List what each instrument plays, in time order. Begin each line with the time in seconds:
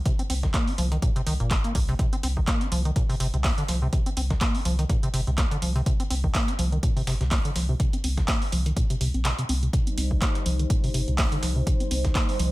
0.06 acid bass C3, kick, closed hi-hat
0.19 acid bass C4, closed hi-hat
0.30 sub bass C2, acid bass C4, closed hi-hat, open hi-hat
0.43 acid bass D#3, kick, snare, closed hi-hat
0.54 acid bass A#3, kick, snare, clap, closed hi-hat
0.68 acid bass C4, open hi-hat
0.78 sub bass C2, acid bass F3, closed hi-hat, open hi-hat
0.92 acid bass D#3, closed hi-hat
1.02 acid bass A#2, kick, closed hi-hat
1.16 acid bass C3, closed hi-hat
1.26 sub bass C2, acid bass D#3, closed hi-hat, open hi-hat
1.40 sub bass G1, acid bass A#2, closed hi-hat
1.51 acid bass C4, kick, snare, clap, closed hi-hat
1.64 acid bass A#3, closed hi-hat
1.75 sub bass C2, acid bass A#2, kick, closed hi-hat, open hi-hat
1.89 acid bass C3, closed hi-hat
1.99 acid bass C3, kick, closed hi-hat
2.13 acid bass C4, closed hi-hat
2.23 sub bass C2, acid bass C4, closed hi-hat, open hi-hat
2.37 acid bass D#3, kick
2.47 acid bass A#3, kick, snare, clap, closed hi-hat
2.61 acid bass C4, snare, closed hi-hat
2.72 sub bass C2, acid bass F3, closed hi-hat, open hi-hat
2.85 acid bass D#3, closed hi-hat
2.96 acid bass A#2, kick, closed hi-hat
3.09 acid bass C3, open hi-hat
3.20 sub bass G1, acid bass C3, closed hi-hat, open hi-hat
3.33 sub bass C2, acid bass C3, closed hi-hat
3.44 acid bass A#3, kick, snare, clap, closed hi-hat, open hi-hat
3.58 acid bass D3, closed hi-hat
3.68 sub bass C2, acid bass F3, snare, closed hi-hat, open hi-hat
3.82 acid bass C3
3.93 acid bass C3, kick, closed hi-hat
4.06 acid bass C4, closed hi-hat
4.17 sub bass C2, acid bass C4, closed hi-hat, open hi-hat
4.30 acid bass D#3, kick, snare, closed hi-hat
4.41 acid bass A#3, kick, snare, clap, closed hi-hat
4.55 acid bass C4, open hi-hat
4.65 sub bass C2, acid bass F3, closed hi-hat, open hi-hat
4.79 acid bass D#3, closed hi-hat
4.89 acid bass A#2, kick, closed hi-hat
5.03 acid bass C3, closed hi-hat
5.14 sub bass G1, acid bass C3, closed hi-hat, open hi-hat
5.27 sub bass C2, acid bass C3, closed hi-hat
5.38 acid bass A#3, kick, snare, clap, closed hi-hat
5.51 acid bass D3, closed hi-hat
5.62 sub bass C2, acid bass F3, closed hi-hat, open hi-hat
5.75 acid bass C3, closed hi-hat
5.86 acid bass C3, kick, closed hi-hat
6.00 acid bass C4, closed hi-hat
6.10 sub bass C2, acid bass C4, closed hi-hat, open hi-hat
6.24 acid bass D#3, kick
6.34 acid bass A#3, kick, snare, clap, closed hi-hat
6.48 acid bass C4, snare, closed hi-hat
6.59 sub bass C2, acid bass F3, closed hi-hat, open hi-hat
6.72 acid bass D#3, closed hi-hat
6.83 acid bass A#2, kick, closed hi-hat
6.96 acid bass C3, open hi-hat
7.07 sub bass G1, acid bass C3, snare, closed hi-hat, open hi-hat
7.21 sub bass C2, acid bass C3, snare, closed hi-hat
7.31 acid bass A#3, kick, snare, clap, closed hi-hat, open hi-hat
7.45 acid bass D3, closed hi-hat
7.55 sub bass C2, acid bass F3, snare, closed hi-hat, open hi-hat
7.69 acid bass C3
7.80 acid bass C3, kick, closed hi-hat
7.93 acid bass C4, closed hi-hat
8.04 sub bass C2, acid bass C4, closed hi-hat, open hi-hat
8.17 acid bass D#3, kick, snare, closed hi-hat
8.28 acid bass A#3, kick, snare, clap, closed hi-hat
8.42 acid bass C4, open hi-hat
8.52 sub bass C2, acid bass F3, closed hi-hat, open hi-hat
8.66 acid bass D#3, closed hi-hat
8.76 acid bass A#2, kick, closed hi-hat
8.90 acid bass C3, closed hi-hat
9.01 sub bass C2, acid bass C3, closed hi-hat, open hi-hat
9.14 sub bass A#1, acid bass C4, closed hi-hat
9.25 acid bass C3, snare, clap, closed hi-hat
9.38 acid bass C3, closed hi-hat
9.49 sub bass C2, acid bass C4, open hi-hat
9.63 acid bass C3, closed hi-hat
9.73 acid bass C3, analog synth pad G3 D#4 C5, kick, closed hi-hat
9.87 acid bass C4, closed hi-hat
9.98 sub bass C2, acid bass C4, closed hi-hat, open hi-hat
10.11 acid bass D#3, kick
10.22 acid bass A#3, kick, snare, clap, closed hi-hat
10.35 acid bass C4, snare, closed hi-hat
10.46 sub bass C2, acid bass F3, closed hi-hat, open hi-hat
10.59 acid bass D#3, closed hi-hat
10.70 acid bass A#2, kick, closed hi-hat
10.84 acid bass C3, open hi-hat
10.94 sub bass G1, acid bass C3, closed hi-hat, open hi-hat
11.08 sub bass C2, acid bass C3, closed hi-hat
11.18 acid bass A#3, kick, snare, clap, closed hi-hat, open hi-hat
11.32 acid bass D3, closed hi-hat
11.43 sub bass C2, acid bass F3, snare, closed hi-hat, open hi-hat
11.56 acid bass C3
11.67 acid bass C3, kick, closed hi-hat
11.80 acid bass C4, closed hi-hat
11.91 sub bass C2, acid bass C4, closed hi-hat, open hi-hat
12.04 acid bass D#3, kick, snare, closed hi-hat
12.15 acid bass A#3, kick, snare, clap, closed hi-hat
12.29 acid bass C4, open hi-hat
12.39 sub bass C2, acid bass F3, closed hi-hat, open hi-hat